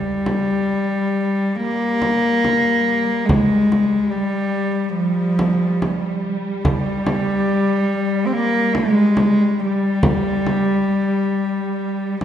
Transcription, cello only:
0.00 1.57 G3 medium
1.56 3.27 A#3 medium
3.26 4.12 G#3 medium
4.10 4.94 G3 medium
4.95 6.18 F3 medium
6.65 8.28 G3 medium
8.27 8.35 C4 medium
8.33 8.78 A#3 medium
8.76 9.62 G#3 medium
9.60 12.21 G3 medium
12.21 12.25 F3 medium

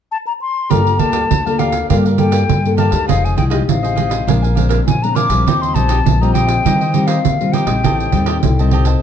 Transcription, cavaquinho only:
0.70 0.98 G4 medium
0.70 0.98 A#4 medium
0.70 0.99 D5 medium
0.70 0.99 F5 medium
0.99 1.11 G4 soft
0.99 1.11 A#4 soft
0.99 1.12 D5 soft
0.99 1.12 F5 medium
1.12 1.23 G4 medium
1.12 1.23 A#4 medium
1.12 1.23 D5 medium
1.12 1.23 F5 medium
1.46 1.58 A#4 soft
1.46 1.59 D5 soft
1.46 1.59 F5 soft
1.59 1.73 G4 medium
1.59 1.73 A#4 medium
1.59 1.72 D5 medium
1.59 1.71 F5 medium
1.72 1.88 A#4 soft
1.72 1.88 D5 soft
1.72 1.87 F5 soft
1.90 2.04 G4 medium
1.90 2.04 A#4 medium
1.90 2.04 D5 medium
1.90 2.04 F5 medium
2.05 2.17 A#4 soft
2.05 2.18 D5 soft
2.05 2.19 F5 soft
2.18 2.30 G4 soft
2.18 2.30 A#4 soft
2.18 2.31 D5 soft
2.18 2.31 F5 soft
2.31 2.42 G4 medium
2.31 2.42 A#4 medium
2.31 2.43 D5 medium
2.31 2.43 F5 medium
2.77 2.92 G4 medium
2.77 2.91 A#4 medium
2.77 2.90 D5 medium
2.77 2.89 F5 medium
2.91 3.07 A#4 soft
2.91 3.07 D5 soft
2.91 3.06 F5 soft
3.08 3.35 F4 medium
3.08 3.36 G#4 medium
3.08 3.37 C5 medium
3.08 3.37 D#5 medium
3.37 3.49 F4 soft
3.37 3.49 G#4 soft
3.37 3.50 C5 soft
3.37 3.50 D#5 soft
3.50 3.61 F4 medium
3.50 3.61 G#4 medium
3.50 3.61 C5 medium
3.50 3.62 D#5 medium
3.83 3.95 G#4 soft
3.83 3.96 C5 soft
3.83 3.97 D#5 soft
3.96 4.11 F4 medium
3.96 4.10 G#4 medium
3.96 4.09 C5 medium
3.96 4.08 D#5 medium
4.10 4.26 G#4 soft
4.10 4.26 C5 soft
4.10 4.25 D#5 soft
4.27 4.41 D4 medium
4.27 4.42 A#4 medium
4.27 4.42 F5 medium
4.27 4.41 G#5 medium
4.42 4.55 A#4 soft
4.42 4.55 F5 soft
4.42 4.56 G#5 soft
4.55 4.68 D4 soft
4.55 4.68 A#4 soft
4.55 4.69 F5 soft
4.55 4.69 G#5 medium
4.69 4.80 D4 medium
4.69 4.80 A#4 medium
4.69 4.80 F5 medium
4.69 4.80 G#5 medium
5.15 5.30 D4 medium
5.15 5.30 A#4 medium
5.15 5.29 F5 medium
5.15 5.28 G#5 medium
5.29 5.45 A#4 soft
5.29 5.45 F5 soft
5.29 5.44 G#5 soft
5.47 5.73 D#4 medium
5.47 5.74 G4 medium
5.47 5.75 C5 medium
5.47 5.75 D#5 medium
5.74 5.87 D#4 soft
5.74 5.88 G4 soft
5.74 5.88 C5 soft
5.74 5.88 D#5 medium
5.88 5.99 D#4 medium
5.88 5.99 G4 medium
5.88 5.99 C5 medium
5.88 5.99 D#5 medium
6.21 6.34 G4 soft
6.21 6.34 C5 soft
6.21 6.34 D#5 soft
6.34 6.48 D#4 medium
6.34 6.48 G4 medium
6.34 6.47 C5 medium
6.34 6.46 D#5 medium
6.47 6.63 G4 soft
6.47 6.63 C5 soft
6.47 6.62 D#5 soft
6.65 6.79 D#4 medium
6.65 6.79 G4 medium
6.65 6.79 C5 medium
6.65 6.80 D#5 medium
6.81 6.93 G4 soft
6.81 6.93 C5 soft
6.81 6.94 D#5 soft
6.93 7.06 D#4 soft
6.93 7.07 G4 soft
6.93 7.07 C5 medium
6.93 7.08 D#5 soft
7.07 7.18 D#4 medium
7.07 7.18 G4 medium
7.07 7.18 C5 medium
7.07 7.18 D#5 medium
7.53 7.67 D#4 medium
7.53 7.67 G4 medium
7.53 7.66 C5 medium
7.53 7.65 D#5 medium
7.67 7.83 G4 soft
7.67 7.82 C5 soft
7.67 7.81 D#5 soft
7.84 8.11 G4 medium
7.84 8.12 C5 medium
7.84 8.13 D#5 medium
7.84 8.13 A5 medium
8.12 8.25 G4 soft
8.12 8.25 C5 soft
8.12 8.26 D#5 soft
8.12 8.26 A5 soft
8.26 8.36 G4 medium
8.26 8.36 C5 medium
8.26 8.37 D#5 medium
8.26 8.37 A5 medium
8.59 8.72 C5 soft
8.59 8.72 D#5 soft
8.59 8.72 A5 soft
8.72 8.86 G4 medium
8.72 8.86 C5 medium
8.72 8.85 D#5 medium
8.72 8.84 A5 medium
8.86 9.01 C5 soft
8.86 9.01 D#5 soft
8.86 9.00 A5 medium

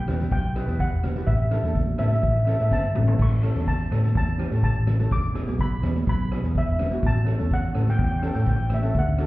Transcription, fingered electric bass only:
0.08 0.27 E2 medium
0.32 0.61 B1 medium
0.68 0.87 E2 loud
0.91 1.21 E1 loud
1.27 1.57 A1 loud
1.63 1.92 E2 medium
1.99 2.19 A2 medium
2.23 2.53 A1 medium
2.60 2.70 A2 medium
2.71 2.93 G1 medium
2.95 3.17 A1 medium
3.19 3.49 A1 loud
3.56 3.85 E2 medium
3.92 4.11 A2 medium
4.15 4.45 E2 loud
4.51 4.71 A2 medium
4.76 5.05 A1 medium
5.11 5.41 E1 medium
5.48 5.77 B1 medium
5.82 6.02 E2 loud
6.07 6.37 B1 loud
6.44 6.63 E2 loud
6.67 6.97 E1 medium
7.03 7.33 A1 loud
7.40 7.69 E2 medium
7.75 7.95 A2 medium
7.99 8.29 E2 loud
8.35 8.55 A2 medium
8.61 8.90 A1 medium
8.95 9.25 D2 loud

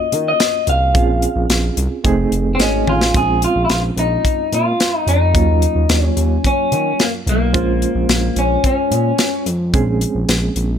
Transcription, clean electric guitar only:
0.00 0.25 D#5 medium
0.28 0.67 D#5 medium
0.69 1.75 F5 medium
2.55 2.61 C4 medium
2.61 2.89 C#4 loud
2.89 3.16 F4 loud
3.17 3.44 G#4 medium
3.44 3.64 F4 medium
3.65 3.71 E4 medium
3.71 3.78 F4 medium
3.99 4.55 D#4 medium
4.54 4.98 F4 loud
4.98 5.09 D#4 loud
5.09 6.04 D#4 loud
6.04 6.46 C#4 loud
6.47 7.02 C#4 medium
7.01 7.08 A#3 medium
7.29 8.41 A#3 medium
8.39 8.65 C#4 medium
8.66 9.43 C#4 medium

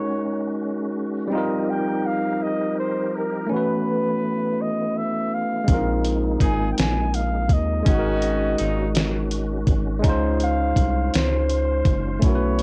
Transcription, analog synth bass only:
5.69 6.37 A#1 loud
6.41 6.74 G#1 loud
6.79 7.52 A#1 loud
7.50 7.83 D#2 loud
7.87 8.55 G#1 loud
8.61 9.65 G#1 medium
9.68 10.06 G#1 medium
10.05 10.73 C#2 loud
10.77 11.10 C2 medium
11.15 11.83 C#2 medium
11.86 12.19 F#1 medium
12.23 12.62 B1 loud

